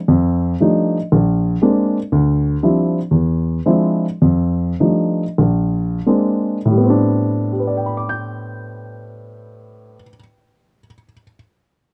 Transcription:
0.08 F2
0.60 F3 G3 A3 D4 D#4
1.12 A#1
1.62 G#3 A#3 C4 D4
2.12 D2
2.63 F3 G3 C4 D4 E4
3.11 E2
3.66 F3 G#3 C4 D4 E4
4.22 F2
4.80 F3 G3 A3 D4 D#4
5.38 A#1
6.06 G#3 A#3 C4 D4
6.65 A2
6.71 G3
6.78 B3
6.84 C4
6.90 D4
7.52 G4
7.60 B4
7.67 D5
7.77 G5
7.86 B5
7.97 D6
8.09 G6

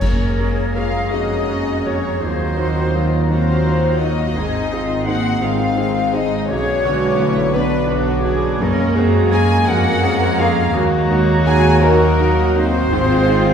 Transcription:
Already playing: C#4 C#5
0.01 F#2 G#3 A#3 C#4 G#4 A#4 A#5, concert bass drum, crash
0.39 A#3 C#4 G#4
0.75 A#3 C#4 F4 G#4 F5
1.12 F2 A#3 C#4 D#4 F#4 G#4 D#5
1.50 A#3 C#4 G#4
1.84 A#3 C#4 G#4 C#5
2.20 D#2 F#3 C4 D#4 F4 G#4 C5 A#5
2.57 F#3 A#3 D#4 F#4
2.92 F#3 A#3 D#4 F4
3.28 F#3 A#3 C4 D#4 F#4 C5 F5
3.65 F#3 A#3 D#4
4.00 F#3 A#3 D#4 D#5
4.35 G#1 G#2 D#3 C4 D#4 G#4 C6
4.72 C4 D#4 F4 G#4
5.05 A#3 C4 D#4 F#4 G#4 F#5
5.41 G#1 G#3 C4 D#4 F4 G#4 F5
5.76 C4 D#4 G#4
6.13 C4 D#4 G#4 D#5
6.48 B1 D3 F#3 B3 C#4 F#4 G#4 C#5 D6
6.85 D3 G#3 B3 F#4
7.19 D3 A3 B3 E4 F#4
7.54 B3 D4 F#4 B4 D6
7.90 B3 D4 F#4
8.25 B3 D4 F#4 G#4
8.61 F#2 G#3 A#3 C#4 G#4 A#4 A#5
8.96 A#3 C4 C#4 F#4 G#4
9.32 A#3 C#4 G#4 G#5
9.67 F2 A#3 C#4 F#4 G#4 A#4 F#5 A#5
10.03 A#3 C#4 G#4
10.38 A#3 C#4 F4 G#4 F5
10.73 D#2 F#3 G#3 F#4 A#5
11.11 A#3 D#4 F#4
11.46 A#3 D#4 F#4 G#4 G#5
11.82 F#3 A#3 D#4 F#4 A#4 A#5
12.20 A#3 D#4 F#4
12.55 A#3 C4 D#4 F#4 C5
12.91 G#1 G#2 G#3 C4 F4 G#4 C6
13.28 C4 D#4 G#4

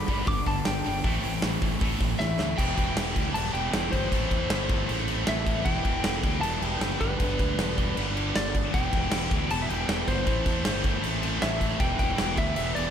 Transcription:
Already playing: B5
0.08 G1 G2 D3 G3 B3 D4, kick, open hi-hat
0.26 G1 G2 D3 G3 B3 D4 D6, kick, open hi-hat
0.46 G1 G2 D3 A5, kick, snare, open hi-hat
0.65 G1 G2 D3 G3 B3 D4 G5, snare, open hi-hat
0.84 G1 G2 D3 G3 B3 D4, open hi-hat
1.04 A1 A2 E3 A3 C4 E4, kick, open hi-hat
1.23 A1 A2 E3, open hi-hat
1.42 A1 A2 E3 A3 C4 E4, snare, open hi-hat
1.61 A1 A2 E3 A3 C4 E4, kick, open hi-hat
1.80 A1 A2 E3 A3 C4 E4, kick, open hi-hat
2.00 A1 A2 E3, kick, snare, open hi-hat
2.19 A1 A2 E3 A3 C4 E4 E5, snare
2.38 D2 A2 E3 A3 C4 E4, snare
2.57 E1 E2 B2 E3 G3 B3 E4 G5, kick, crash
2.78 E1, kick, crash
2.96 E1 E3 G3 B3 E4, snare, crash
3.15 D2 E3 G3 B3 E4, kick, crash
3.34 E1 E2 B2 E3 G3 B3 E4 A5, crash
3.45 snare
3.53 E1 E2 B2 E3 G5, crash
3.72 E1 E2 B2 E3 G3 B3 E4, snare, crash
3.92 G1 E3 G3 B3 E4 C5, kick, crash
4.11 A1 A2 E3 A3 C4 E4, kick, crash
4.31 E2, kick, crash
4.49 G1 A2 E3 A3 C4 E4, snare, crash
4.68 A2 E3 A3 C4 E4, kick, crash
4.87 A1 A2 E3 A3 C4 E4, crash
4.98 snare
5.07 A2 E3 A3, crash
5.26 A1 A2 E3 A3 C4 E4 E5, snare, crash
5.45 A2 E3 A3 C4 E4, kick, crash
5.64 E1 E2 B2 E3 G3 B3 E4 G5, kick, crash
5.85 E1, kick, crash
6.04 E1 E3 G3 B3 E4, snare, crash
6.23 D2 E3 G3 B3 E4, kick, crash
6.41 E1 E2 B2 E3 G3 B3 E4 A5, crash
6.60 E1 E2 B2 E3 G5, crash
6.80 F#1 E2 B2 E3 G3 B3 E4, snare, crash
7.00 G1 G2 D3 G3 B3 D4 B4, kick, crash
7.19 G1 G2 D3 G3 B3 D4, kick, crash
7.39 D2, kick, crash
7.57 E1 G2 D3 G3 B3 D4, snare, crash
7.77 G2 D3 G3 B3 D4, kick, crash
7.95 G1 G2 D3 G3 B3 D4, crash
8.14 G2 D3 G3, crash
8.35 G1 G2 D3 G3 B3 D4 D5, snare, crash
8.54 G2 D3 G3 B3 D4, kick, crash
8.72 E1 E2 B2 E3 G3 B3 E4 G5, kick, crash
8.77 E3
8.93 E1, kick, crash
9.11 E1 E3 G3 B3 E4, snare, crash
9.31 D2 E3 G3 B3 E4, kick, crash
9.49 E1 E2 B2 E3 G3 B3 E4 A5, crash
9.62 E5
9.68 E1 E2 B2 E3 G5, crash
9.86 E1 E2 B2 E3 G3 B3 E4, snare, crash
10.07 G1 E3 G3 B3 E4 C5, kick, crash
10.26 A1 A2 E3 A3 C4 E4, kick, crash
10.46 E2, kick, crash
10.64 G1 A2 E3 A3 C4 E4, snare, crash
10.83 A2 E3 A3 C4 E4, kick, crash
11.03 A1 A2 E3 A3 C4 E4, crash
11.21 A2 E3 A3, crash
11.41 A1 A2 E3 A3 C4 E4 E5, snare, crash
11.60 A2 E3 A3 C4 E4, kick, crash
11.79 E1 E2 B2 E3 G3 B3 E4 G5, kick, crash
11.83 E3
11.99 E1 G5, kick, crash
12.17 E1 E3 G3 B3 E4, snare, crash
12.37 D2 E3 G3 B3 E4 E5, kick, crash
12.55 E1 E2 B2 E3 G3 B3 E4 E5, crash
12.59 E3
12.75 E1 E2 B2 E3 D5, crash

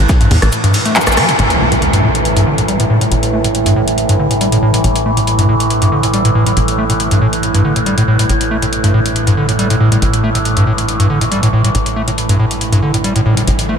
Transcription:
Already playing: A2 E3
0.09 kick, snare, closed hi-hat, shaker
0.21 G2, closed hi-hat
0.31 E2 A2, open hi-hat, ride
0.42 A1, cross-stick, closed hi-hat
0.52 closed hi-hat, shaker
0.64 G2, closed hi-hat
0.74 A2, open hi-hat, ride, shaker
0.85 A3, closed hi-hat
0.96 E3, snare, clap, closed hi-hat, shaker
1.01 snare, shaker
1.07 A1, cross-stick, snare, closed hi-hat, shaker
1.12 snare, shaker
1.17 G3, cross-stick, open hi-hat, ride, shaker
1.29 A2, closed hi-hat
1.39 A1 A2 E3, closed hi-hat, impact
1.50 closed hi-hat
1.61 A3
1.72 A2, closed hi-hat
1.82 closed hi-hat
1.93 G2, closed hi-hat
2.04 A2
2.15 closed hi-hat
2.25 closed hi-hat
2.37 G2, closed hi-hat
2.47 D3
2.58 A2, closed hi-hat
2.68 G3, closed hi-hat
2.80 A2, closed hi-hat
2.90 A2, shaker
3.01 A2, closed hi-hat
3.12 A1 A2, closed hi-hat
3.23 closed hi-hat
3.33 A3, shaker
3.44 A2, closed hi-hat
3.55 closed hi-hat
3.66 G2, closed hi-hat
3.76 A2
3.88 closed hi-hat
3.98 closed hi-hat, shaker
4.09 G2, closed hi-hat
4.19 D3, shaker
4.31 A2, closed hi-hat
4.41 G3, closed hi-hat
4.52 A2, closed hi-hat
4.63 A2, shaker
4.74 A2, closed hi-hat
4.84 A1 A2, closed hi-hat
4.96 closed hi-hat
5.06 A3, shaker
5.17 A2, closed hi-hat
5.27 closed hi-hat
5.39 G2, closed hi-hat
5.49 A2, shaker
5.60 closed hi-hat
5.70 closed hi-hat
5.82 G2, closed hi-hat
5.92 D3, shaker
6.03 A2, closed hi-hat
6.14 G3, closed hi-hat
6.25 A2, closed hi-hat
6.35 A2, shaker
6.46 A2, closed hi-hat
6.57 A1 A2, closed hi-hat, shaker
6.68 closed hi-hat
6.78 A3, shaker
6.90 A2, closed hi-hat
7.00 closed hi-hat
7.11 G2, closed hi-hat
7.22 A2, shaker
7.33 closed hi-hat
7.43 closed hi-hat, shaker
7.54 G2, closed hi-hat
7.65 D3, shaker
7.76 A2, closed hi-hat
7.86 G3, closed hi-hat, shaker
7.98 A2, closed hi-hat
8.08 A2, shaker
8.19 A2, closed hi-hat
8.29 A1 A2, closed hi-hat, shaker
8.41 closed hi-hat
8.51 A3, shaker
8.62 A2, closed hi-hat
8.73 closed hi-hat, shaker
8.84 G2, closed hi-hat
8.94 A2, shaker
9.06 closed hi-hat
9.16 closed hi-hat, shaker
9.27 G2, closed hi-hat
9.37 D3, shaker
9.49 A2, closed hi-hat
9.59 G3, closed hi-hat, shaker
9.70 A2, closed hi-hat
9.80 A2, shaker
9.92 A2, closed hi-hat
10.02 A1 A2, closed hi-hat
10.14 closed hi-hat
10.24 A3, shaker
10.35 A2, closed hi-hat
10.45 closed hi-hat, shaker
10.57 G2, closed hi-hat
10.67 A2, shaker
10.78 closed hi-hat
10.88 closed hi-hat, shaker
11.00 G2, closed hi-hat
11.10 D3, shaker
11.21 A2, closed hi-hat
11.31 G3, closed hi-hat, shaker
11.43 A2, closed hi-hat
11.53 A2, shaker
11.64 A2, closed hi-hat
11.75 A1 A2, closed hi-hat, riser, shaker
11.86 closed hi-hat
11.96 A3, shaker
12.08 A2, closed hi-hat
12.18 closed hi-hat, shaker
12.29 G2, closed hi-hat
12.39 A2, shaker
12.51 closed hi-hat
12.61 closed hi-hat, shaker
12.72 G2, closed hi-hat
12.83 D3, shaker
12.94 A2, closed hi-hat
13.04 G3, closed hi-hat, shaker
13.16 A2, closed hi-hat
13.26 A2, shaker
13.37 A2, closed hi-hat
13.47 A1 A2, closed hi-hat, shaker
13.59 closed hi-hat
13.69 A3, shaker

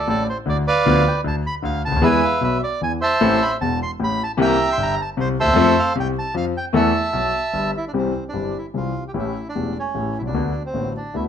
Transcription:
Already playing: A4
0.07 A1 A2 D5
0.29 C5
0.46 D2 D3 D5
0.67 B4 D5 F5
0.86 D2 D3 F3 B3 F4
1.08 G5
1.24 D2 D3 A5
1.47 B5
1.62 D2 D3 F5
1.85 C#2 A5
1.91 D2
1.96 D#2
2.02 E2 E3 G#3 B3 G#4 B4 E5 G#5
2.24 F5
2.41 B1 B2 E5
2.64 D5
2.81 E2 E3 G#5
3.01 C5 E5 A5
3.21 A1 A2 E3 A3 C4 A4
3.42 B5
3.61 E1 E2 A5
3.83 C6
3.99 A1 A2
4.04 B5
4.24 A5
4.37 C2 C3 E3 A#3 C4 G4
4.42 E5 G5 A#5
4.73 C6
4.77 G1 G2
4.83 A#5
5.02 A5
5.17 C2 C3 C5
5.40 D2 A4 C5 E5
5.47 D#2
5.52 E2 F3
5.56 F2 A3 C4 A4
5.79 F5
5.95 C2 C3
6.00 G5
6.19 A5
6.34 F2 F3 F5
6.57 G5
6.73 E2 E3 A3 B3 A4 E5 A5
7.13 B1 B2
7.53 G1 G2
7.77 E4
7.88 D4
7.93 C2 C3 E3 G3 C4 G4
7.98 C4
8.29 D4
8.33 G1 G2 E3 G3 C4 G4
8.58 E4
8.74 C2 C3 E3 G3 C4 F4 G4
9.08 G4
9.14 A1 A2 E3 A3 C#4 G4
9.19 E4
9.49 D4
9.55 E1 E2 E3 A3 C#4 G4
9.79 C#4
9.94 A1 A2 E3 A3 C#4 G4
10.18 B1 E4
10.25 C2 C#2 D4
10.34 D2 D3 A3 B3 F#4
10.66 C4
10.74 A1 A2 D3 A3 B3 F#4
10.97 D4
11.14 D2 D3 A3 B3 E4 F#4

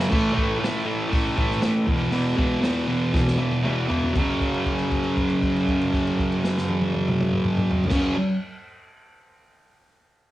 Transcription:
0.00 snare
0.10 A2 E3 A3, kick, crash
0.33 A2 E3 A3
0.38 kick
0.59 A2 E3 A3
0.64 snare, open hi-hat
0.85 A2 E3 A3
1.09 A2 E3 A3, kick, open hi-hat
1.37 A2 E3 A3, kick
1.51 snare
1.62 A2 E3 A3, snare, open hi-hat
1.86 E2 B2 E3, kick
2.12 E2 B2 E3, open hi-hat
2.37 E2 B2 E3, kick
2.61 E2 B2 E3, snare, open hi-hat
2.88 E2 B2 E3
3.13 E2 B2 E3, kick, snare
3.28 snare
3.38 E2 B2 E3
3.51 high tom
3.63 E2 B2 E3, mid tom
3.87 E2 B2 E3, floor tom
4.03 floor tom
4.14 F#2 C#3 F#3, kick, crash
4.41 kick, crash
4.54 crash
4.66 kick, crash
4.79 crash
4.91 kick, crash
5.04 crash
5.17 kick, crash
5.30 crash
5.42 kick, crash
5.56 crash
5.68 kick, crash
5.81 crash
5.93 kick, crash
6.07 crash
6.19 kick, crash
6.32 crash
6.44 snare
6.58 snare
6.69 high tom
6.82 high tom
6.94 high tom
7.08 mid tom
7.21 mid tom
7.33 mid tom
7.45 mid tom
7.58 mid tom
7.71 floor tom
7.84 floor tom
7.88 F#2 C#3, kick, snare, crash
7.93 F#3

